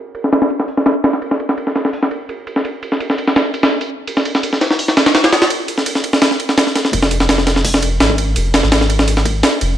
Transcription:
0.15 ride
0.24 snare
0.33 snare, ride
0.42 snare, ride
0.50 ride
0.59 snare
0.68 open hi-hat
0.77 snare
0.86 snare, ride
1.04 snare, ride
1.13 snare
1.22 ride
1.31 snare
1.40 ride
1.49 snare
1.58 ride
1.67 snare
1.76 snare, ride
1.85 snare
1.93 open hi-hat
2.03 snare
2.11 ride
2.29 ride
2.47 ride
2.56 snare
2.65 ride
2.83 ride
2.92 snare
3.00 ride
3.10 snare
3.18 ride
3.27 snare
3.36 snare, ride
3.54 ride
3.63 snare, ride
3.81 ride
4.07 ride
4.17 snare
4.25 ride
4.35 snare
4.43 ride
4.53 snare
4.61 snare, ride
4.70 snare
4.79 open hi-hat
4.88 snare
4.97 snare, ride
5.06 snare, ride
5.15 snare, ride
5.24 snare, ride
5.33 snare, ride
5.42 snare, ride
5.50 ride
5.68 ride
5.78 snare
5.86 ride
5.95 snare
6.04 ride
6.13 snare
6.22 snare, ride
6.31 snare
6.40 ride
6.49 snare
6.58 snare, ride
6.67 snare
6.76 snare, ride
6.85 snare
6.93 sub bass F1, kick, ride
7.03 snare
7.11 ride
7.20 snare
7.29 snare, ride
7.38 snare
7.47 snare, ride
7.56 snare
7.65 kick, open hi-hat
7.74 snare
7.82 ride
8.00 sub bass G#1, snare, ride
8.10 kick
8.18 ride
8.36 sub bass F1, ride
8.54 snare, ride
8.63 sub bass G#1, snare
8.72 snare, ride
8.81 snare
8.90 ride
8.99 snare
9.08 ride
9.17 snare
9.25 kick, ride
9.43 snare, ride
9.61 sub bass F1, ride

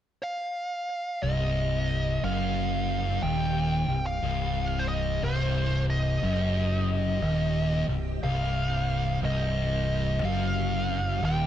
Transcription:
0.23 lead electric guitar F5
1.23 fingered electric bass C1, distorted electric guitar C2, string machine C3 C4 G4, lead electric guitar D#5
2.23 fingered electric bass F#1, distorted electric guitar F#2, lead electric guitar F5
3.23 fingered electric bass D#1, distorted electric guitar D#2, lead electric guitar G5
3.88 fingered electric bass C1, distorted electric guitar C2
4.06 lead electric guitar F5
4.23 fingered electric bass C1, distorted electric guitar C2
4.79 lead electric guitar C5
4.89 lead electric guitar D#5
5.23 fingered electric bass C1, distorted electric guitar C2, lead electric guitar C5
5.90 lead electric guitar D#5
6.23 fingered electric bass F#1, distorted electric guitar F#2
7.22 fingered electric bass D#1, distorted electric guitar D#2
7.88 fingered electric bass C1, distorted electric guitar C2
8.22 fingered electric bass C1, distorted electric guitar C2, lead electric guitar F5
9.22 fingered electric bass C1, distorted electric guitar C2, lead electric guitar D#5
10.22 fingered electric bass F#1, distorted electric guitar F#2, lead electric guitar F5
11.22 fingered electric bass D#1, distorted electric guitar D#2, lead electric guitar G5

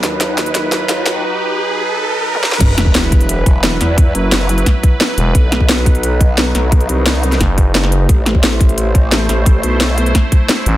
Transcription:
Already playing: analog synth pad F#3 D#4 B4, riser
0.03 wobble bass D#2, snare, closed hi-hat
0.21 snare, closed hi-hat
0.38 snare, closed hi-hat
0.46 closed hi-hat
0.55 wobble bass D#2, snare, closed hi-hat
0.72 snare, closed hi-hat
0.89 snare, closed hi-hat
1.06 snare, closed hi-hat
2.35 high tom
2.43 snare
2.52 snare
2.61 wobble bass E1, analog synth pad F#3 E4 B4, kick, closed hi-hat, crash, sub drop
2.78 snare, closed hi-hat
2.86 kick
2.95 wobble bass E1, snare, closed hi-hat
3.12 kick, closed hi-hat
3.21 closed hi-hat
3.29 closed hi-hat
3.46 kick, closed hi-hat
3.63 snare, closed hi-hat
3.81 wobble bass E2, snare, closed hi-hat
3.98 kick, closed hi-hat
4.15 wobble bass F#1, closed hi-hat
4.32 snare, closed hi-hat
4.49 closed hi-hat
4.58 closed hi-hat
4.66 kick, snare, closed hi-hat
4.83 kick, closed hi-hat
5.01 snare, closed hi-hat
5.18 fm bass E1, closed hi-hat
5.35 wobble bass B1, analog synth pad F#3 D#4, kick, closed hi-hat
5.52 snare, closed hi-hat
5.61 kick
5.69 wobble bass B1, snare, closed hi-hat
5.86 kick, closed hi-hat
5.95 closed hi-hat
6.03 closed hi-hat
6.21 kick, closed hi-hat
6.38 snare, closed hi-hat
6.55 wobble bass B1, snare, closed hi-hat
6.72 kick, closed hi-hat
6.81 closed hi-hat
6.89 wobble bass C2, closed hi-hat
7.06 snare, closed hi-hat
7.23 closed hi-hat
7.32 snare, closed hi-hat
7.41 fm bass F#1, kick, snare, closed hi-hat
7.58 kick, closed hi-hat
7.75 snare, closed hi-hat
7.84 snare
7.92 closed hi-hat
8.09 wobble bass A1, analog synth pad A3 E4 C5, kick, closed hi-hat
8.26 snare, closed hi-hat
8.35 kick
8.43 wobble bass A1, snare, closed hi-hat
8.61 kick, closed hi-hat
8.69 closed hi-hat
8.78 closed hi-hat
8.95 kick, closed hi-hat
9.12 snare, closed hi-hat
9.29 wobble bass A1, snare, closed hi-hat
9.46 kick, closed hi-hat
9.63 wobble bass B1, closed hi-hat
9.81 snare, closed hi-hat
9.98 closed hi-hat
10.06 closed hi-hat
10.15 kick, snare, closed hi-hat
10.32 kick, closed hi-hat
10.49 snare, closed hi-hat
10.66 fm bass A1, closed hi-hat

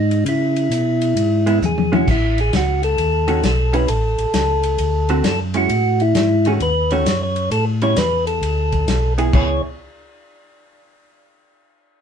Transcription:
Already playing: tonewheel organ G#2 D#4
0.11 ride
0.25 tonewheel organ C#3 E4, ride
0.56 ride
0.70 tonewheel organ B2, hi-hat pedal, ride
1.01 ride
1.16 tonewheel organ G#2, ride
1.46 hollow-body jazz guitar G#3 B3 E4, ride
1.62 tonewheel organ E2 G#4, hi-hat pedal, high tom
1.78 high tom
1.92 hollow-body jazz guitar G#3 C#4 E4, tonewheel organ F#4, high tom
2.07 tonewheel organ A1 E4, kick, crash
2.38 tonewheel organ G#4, ride
2.53 tonewheel organ C#2 F#4, snare, hi-hat pedal, ride
2.83 tonewheel organ A4, ride
2.98 tonewheel organ D#2, ride
3.28 hollow-body jazz guitar D#3 A3 C#4 F#4, ride
3.43 tonewheel organ B1 A4, snare, hi-hat pedal, ride
3.73 hollow-body jazz guitar G3 C#4 E4, tonewheel organ B4, ride
3.88 tonewheel organ A1 A4, ride
4.18 tonewheel organ A1, ride
4.33 tonewheel organ C#2, snare, hi-hat pedal, ride
4.63 ride
4.78 tonewheel organ D2, ride
5.09 hollow-body jazz guitar D3 A3 C4 F#4, ride
5.23 tonewheel organ F#2 A4, snare, hi-hat pedal, ride
5.54 hollow-body jazz guitar G#3 C#4 E4, tonewheel organ F#4, ride
5.69 tonewheel organ A2, ride
6.00 tonewheel organ E4, ride
6.15 tonewheel organ G#2, snare, hi-hat pedal, ride
6.45 hollow-body jazz guitar D#3 A3 C#4 F#4, tonewheel organ G#4, ride
6.60 tonewheel organ D#2 B4, ride
6.90 hollow-body jazz guitar D#3 A3 C#4 F#4, tonewheel organ C#5, ride
7.05 tonewheel organ F#2, snare, hi-hat pedal, ride
7.23 tonewheel organ C#5
7.36 ride
7.51 tonewheel organ A2 A4, ride
7.81 hollow-body jazz guitar G3 C#4 E4, tonewheel organ C#5, ride
7.96 tonewheel organ E2 B4, snare, hi-hat pedal, ride
8.27 tonewheel organ A4, ride
8.41 tonewheel organ D2, ride
8.72 kick, ride
8.87 tonewheel organ B1, snare, hi-hat pedal, ride
9.18 hollow-body jazz guitar B3 E4 G#4, ride
9.33 tonewheel organ C#2 C#5, hollow-body jazz guitar B3 E4 G#4, kick, china

